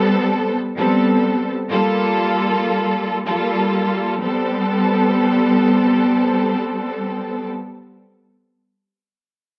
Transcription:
0.00 0.54 G3 loud
0.00 0.54 B3 loud
0.00 0.55 C4 medium
0.00 0.55 A4 loud
0.77 1.50 G3 medium
0.77 1.51 B3 medium
0.77 1.51 C4 medium
0.77 1.51 A4 loud
1.71 3.16 G3 medium
1.71 3.16 A#3 medium
1.71 3.17 F4 medium
1.71 3.17 A4 loud
3.26 4.14 G3 medium
3.26 4.14 A#3 medium
3.26 4.14 F4 medium
3.26 4.14 A4 loud
4.21 7.47 G3 medium
4.21 7.47 B3 medium
4.21 7.47 C4 medium
4.21 7.48 A4 loud

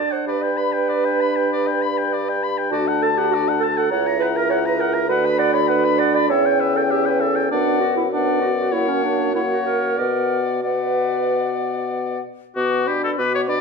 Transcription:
0.00 3.60 D4 soft
0.00 0.14 D5 medium
0.00 0.12 A5 soft
0.11 0.27 C5 medium
0.11 0.27 F#5 soft
0.27 2.68 G2 soft
0.27 2.38 B4 medium
0.27 0.44 D5 soft
0.27 2.72 B5 soft
0.42 0.59 G5 soft
0.57 0.74 B5 soft
0.73 0.90 G5 soft
0.89 1.06 D5 soft
1.05 1.22 G5 soft
1.21 1.38 B5 soft
1.36 1.51 G5 soft
1.53 1.69 D5 soft
1.67 1.83 G5 soft
1.82 1.99 B5 soft
1.98 2.15 G5 soft
2.13 2.30 D5 medium
2.29 2.45 G5 soft
2.44 2.59 B5 soft
2.58 2.72 G5 soft
2.71 3.93 D2 medium
2.71 2.85 F#4 medium
2.71 2.89 D5 soft
2.71 3.89 A5 medium
2.88 3.05 F#5 soft
3.02 3.09 A4 medium
3.02 3.19 A5 soft
3.16 3.30 G4 medium
3.16 3.35 F#5 soft
3.31 3.44 F#4 medium
3.31 3.50 D5 medium
3.49 3.65 F#5 soft
3.61 3.67 A4 medium
3.61 3.79 A5 soft
3.76 3.90 A4 medium
3.76 3.91 F#5 soft
3.89 5.11 C#2 medium
3.89 5.05 E4 medium
3.89 4.19 C#5 medium
3.89 4.08 F#5 medium
3.89 5.11 A#5 medium
4.07 4.24 A#5 soft
4.20 4.27 B4 medium
4.20 4.38 F#5 soft
4.35 4.49 A#4 medium
4.35 4.52 A#5 soft
4.50 4.56 C#5 medium
4.50 4.68 F#5 medium
4.65 4.80 B4 medium
4.65 4.82 A#5 soft
4.79 5.08 A#4 medium
4.79 4.96 F#5 soft
4.94 5.09 A#5 soft
5.09 6.29 D2 medium
5.09 6.31 D4 medium
5.09 5.40 B4 medium
5.09 5.27 F#5 medium
5.09 6.32 B5 medium
5.26 5.40 B5 soft
5.39 5.53 D5 medium
5.39 5.56 F#5 soft
5.54 5.61 C#5 medium
5.54 5.70 B5 soft
5.68 6.00 B4 medium
5.68 5.86 F#5 soft
5.85 6.01 B5 soft
5.99 6.14 D5 medium
5.99 6.17 F#5 soft
6.15 6.28 D5 medium
6.15 6.30 B5 soft
6.28 7.49 E2 medium
6.28 7.51 C#4 soft
6.28 6.61 C#5 medium
6.28 6.47 E5 soft
6.28 7.27 G5 medium
6.46 6.62 G5 soft
6.60 6.75 B4 medium
6.60 6.78 E5 soft
6.75 6.82 A4 medium
6.75 6.92 G5 soft
6.90 7.05 G4 medium
6.90 7.07 E5 medium
7.06 7.23 B4 medium
7.06 7.22 G5 soft
7.20 7.51 A4 medium
7.20 7.37 E5 soft
7.35 7.50 G5 soft
7.51 10.01 F#2 medium
7.51 8.08 B3 soft
7.51 7.80 D4 medium
7.51 7.95 D5 soft
7.51 8.08 F#5 soft
7.81 7.96 F#4 medium
7.97 8.04 E4 medium
8.11 8.74 B3 soft
8.11 8.41 D4 medium
8.11 8.73 D5 soft
8.11 8.72 F#5 soft
8.41 8.48 F#4 medium
8.58 8.74 F#4 medium
8.71 9.34 A#3 soft
8.71 8.90 E4 medium
8.71 9.34 C#5 soft
8.71 9.34 F#5 soft
8.88 9.03 C#4 medium
9.03 9.34 D4 medium
9.35 10.00 A#3 soft
9.35 9.42 E4 medium
9.35 10.00 C#5 soft
9.35 9.97 F#5 soft
9.51 9.66 F#4 soft
9.66 9.98 A#4 medium
9.98 12.24 B2 soft
9.98 10.63 B3 soft
9.98 10.40 A#4 medium
9.98 10.63 D5 soft
9.98 10.62 F#5 soft
10.63 12.21 B3 soft
10.63 11.88 B4 soft
10.63 12.21 D5 soft
10.63 12.21 F#5 soft
12.56 13.11 B2 soft
12.56 12.89 B3 soft
12.56 12.89 F#4 soft
12.56 12.89 F#4 medium
12.56 12.88 D6 soft
12.87 13.20 D4 soft
12.87 13.03 G4 medium
12.87 13.20 B4 soft
12.87 13.20 B5 soft
13.04 13.11 A4 medium
13.18 13.61 B2 soft
13.18 13.50 B3 soft
13.18 13.51 F#4 soft
13.18 13.34 B4 medium
13.18 13.50 D6 soft
13.35 13.42 C#5 medium
13.48 13.61 D4 soft
13.48 13.61 B4 soft
13.48 13.61 D5 medium
13.48 13.61 B5 soft

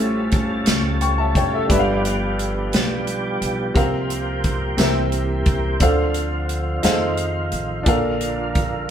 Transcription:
0.00 0.63 A1 medium
0.00 0.63 A2 medium
0.00 5.77 G3 soft
0.00 1.66 A3 soft
0.00 1.65 C#4 medium
0.00 1.68 C#4 soft
0.00 1.66 F4 soft
0.00 1.66 G4 medium
0.00 0.99 A4 medium
0.00 1.66 A4 medium
0.00 1.00 E5 medium
0.31 kick medium
0.31 closed hi-hat soft
0.66 1.31 C#2 medium
0.66 snare medium
0.66 closed hi-hat medium
1.01 1.18 G5 soft
1.01 1.18 C#6 medium
1.01 closed hi-hat soft
1.18 1.35 E5 soft
1.18 1.34 A5 medium
1.35 1.67 F1 medium
1.35 1.53 C#5 soft
1.35 1.52 G5 medium
1.35 kick medium
1.35 closed hi-hat soft
1.54 1.86 A4 soft
1.54 1.71 E5 medium
1.68 2.69 G1 medium
1.68 2.69 G2 medium
1.68 3.74 F3 soft
1.68 3.74 B3 soft
1.68 3.71 D4 medium
1.68 3.74 D4 soft
1.68 3.71 G4 medium
1.68 4.76 G4 medium
1.68 3.72 B4 medium
1.68 kick medium
1.68 closed hi-hat medium
1.73 1.78 E5 medium
1.79 3.75 F5 medium
2.05 closed hi-hat soft
2.39 closed hi-hat soft
2.72 3.37 B1 medium
2.72 snare loud
2.72 closed hi-hat medium
3.07 closed hi-hat soft
3.42 3.73 B1 medium
3.42 closed hi-hat soft
3.74 4.74 C2 medium
3.74 4.74 C3 medium
3.74 4.78 F3 medium
3.74 5.80 A#3 soft
3.74 4.76 C4 medium
3.74 7.84 C4 soft
3.74 4.77 G4 medium
3.74 4.77 A#4 medium
3.74 4.79 F5 medium
3.74 kick medium
3.74 closed hi-hat medium
4.10 closed hi-hat soft
4.44 kick medium
4.44 closed hi-hat soft
4.77 5.42 C2 medium
4.77 5.77 C3 medium
4.77 5.82 E3 medium
4.77 5.81 C4 medium
4.77 5.81 G4 medium
4.77 5.81 A#4 medium
4.77 5.82 E5 medium
4.77 snare medium
4.77 closed hi-hat medium
5.12 closed hi-hat soft
5.46 5.78 C2 medium
5.46 kick medium
5.46 closed hi-hat soft
5.80 6.80 D2 medium
5.80 6.80 D3 medium
5.80 6.84 D3 soft
5.80 6.84 F3 soft
5.80 6.83 D4 medium
5.80 8.90 F4 medium
5.80 6.84 A4 medium
5.80 6.83 C5 medium
5.80 6.83 F5 medium
5.80 kick medium
5.80 closed hi-hat medium
6.14 closed hi-hat soft
6.49 closed hi-hat soft
6.83 7.48 F2 medium
6.83 8.90 F3 soft
6.83 7.86 D#4 medium
6.83 6.90 G#4 soft
6.83 7.87 C5 medium
6.83 7.87 F5 medium
6.83 snare medium
6.83 closed hi-hat medium
6.87 7.88 D#3 medium
6.87 7.84 A4 medium
7.17 closed hi-hat soft
7.52 7.84 A1 medium
7.52 closed hi-hat soft
7.83 8.85 A#1 medium
7.83 8.85 A#2 medium
7.83 8.90 D4 medium
7.83 8.90 A4 medium
7.83 8.90 A#4 medium
7.83 kick loud
7.83 closed hi-hat medium
7.88 8.90 D3 medium
7.88 8.90 A#3 soft
7.88 8.90 F5 medium
8.21 closed hi-hat soft
8.55 kick medium
8.55 closed hi-hat soft

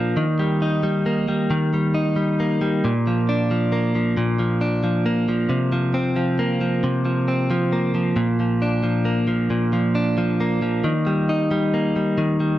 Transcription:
0.00 0.16 A#2 medium
0.00 0.26 F3 medium
0.00 1.06 A#3 medium
0.00 0.26 D4 medium
0.17 1.49 D#3 medium
0.39 0.82 G3 medium
0.62 1.93 D#4 medium
0.83 1.27 G3 medium
1.06 2.39 A#3 medium
1.28 1.72 G3 soft
1.50 2.84 D#3 medium
1.74 2.15 G3 soft
1.94 2.92 D#4 medium
2.16 2.60 G3 medium
2.40 3.72 A#3 medium
2.62 2.93 G3 medium
2.85 4.16 A#2 medium
3.07 3.51 F3 medium
3.29 4.60 D4 medium
3.51 3.95 F3 medium
3.72 5.05 A#3 medium
3.95 4.39 F3 soft
4.17 5.49 A#2 medium
4.39 4.83 F3 medium
4.61 5.59 D4 medium
4.83 5.28 F3 medium
5.06 5.97 A#3 medium
5.29 5.72 F3 medium
5.49 6.83 C3 medium
5.72 6.16 F3 medium
5.94 7.27 C4 medium
6.16 6.61 F3 medium
6.39 7.72 A#3 medium
6.61 7.05 F3 medium
6.84 8.16 C3 medium
7.05 7.50 F3 soft
7.28 8.26 C4 medium
7.51 7.94 F3 medium
7.73 9.05 A#3 medium
7.95 8.39 F3 medium
8.16 9.49 A#2 medium
8.40 8.82 F3 medium
8.62 9.94 D4 medium
8.83 9.26 F3 medium
9.05 10.40 A#3 medium
9.28 9.72 F3 medium
9.50 10.83 A#2 medium
9.73 10.16 F3 medium
9.95 10.92 D4 medium
10.18 10.61 F3 medium
10.40 11.73 A#3 medium
10.62 10.93 F3 medium
10.84 12.17 D#3 medium
11.07 11.50 G3 medium
11.29 12.59 D#4 medium
11.51 11.95 G3 medium
11.74 12.59 A#3 medium
11.96 12.39 G3 medium
12.18 12.59 D#3 medium
12.40 12.59 G3 soft

